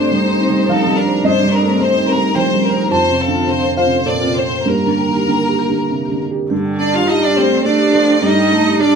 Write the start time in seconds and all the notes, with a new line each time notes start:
Already playing: G2 G3 A3 D4 C5 G5
0.12 G3 D#4 C5
0.27 D#4 C5
0.41 C4
0.50 G3
0.54 D#4
0.68 F3 D#4 A4 F5
0.82 C4
0.87 G3
0.97 D4 A#4
1.06 D#4 C5
1.24 G2 C4 C5 D#5
1.43 G3
1.53 A#4 C5
1.62 A3
1.67 C4
1.79 G3 C4 C5
1.94 D#4
1.98 C5
2.08 C4 A#4
2.16 G3
2.21 D#4
2.35 F3 C4 C5 G5
2.49 G3 C4
2.64 A#4
2.72 C5
2.77 D#4
2.91 F2 C4 F4 C5 A5
3.09 C3
3.20 A4 F5
3.28 D3
3.34 F4
3.47 C3 C5 F5
3.63 A4 C5
3.76 F4 C5 F5
3.85 C3
3.92 A4
4.06 A#2 C4 A4 D5
4.21 C3 F4
4.36 C5
4.45 C5
4.51 A4
4.65 G2 A#3 G4 A#4
4.87 D3
4.98 G5
5.08 D#3
5.13 G4
5.28 D3 G5
5.44 A#4
5.49 G4
5.59 G4
5.70 D3
5.75 A#4
5.90 C3
6.05 G4
6.12 D3
6.31 G4
6.35 A#4
6.50 G2 D3 G4
6.65 G5
6.79 D4 D5 A5
6.93 F4 G4 F5
7.07 G3 D#4 G4 D#5 A5
7.22 D4 D5 G5
7.36 A3 C4 G4 C5
7.51 D5
7.65 A3 D4 G4 D5
7.79 G4
7.92 F3 A3
8.08 G5
8.22 G2 G3 D#4 G4 D#5
8.37 G5
8.51 A3 D4 A5
8.66 G4
8.79 G3 D4 G4 D5 A5